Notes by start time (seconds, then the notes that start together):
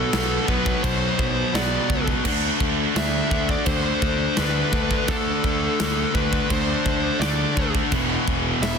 Already playing: B2 F#3 B3 A4
0.11 B1 B2 F#3 B3, snare, china
0.46 B1 B2 F#3 B3 B4, kick
0.51 B2
0.66 kick
0.82 B1 B2 F#3 B3 C5, kick, china
1.19 B1, kick
1.53 B1 B2 F#3 B3 D5, snare, china
1.89 C#2 B2 F#3 B3, kick
2.08 kick
2.24 D2 D3 A3 D4, kick, china, crash
2.60 D2, kick
2.94 D2 D3 A3 D4 E5, snare, china
3.31 D2 D3 A3 D4, kick
3.49 D5, kick
3.65 D2 D3 A3 D4 C5, kick, china
4.02 D2, kick
4.37 D2 D3 A3 D4 B4, snare, china
4.72 D2 D3 A3 D4, kick
4.91 kick
5.07 D2 D3 A3 D4 A4, kick, china
5.44 D2, kick
5.79 D2 D3 A3 D4, snare, china
6.14 D2 D3 A3 D4 B4, kick
6.33 kick
6.50 D2 D3 A3 D4 C5, kick, china
6.85 D2, kick
7.20 D2 D3 A3 D4 D5, snare, china
7.56 D2 D3 A3 D4, kick
7.75 kick
7.92 E1 E2 B2 E3, kick, china
8.28 E1, kick
8.61 E1 E2 B2 E5, snare, china
8.65 E3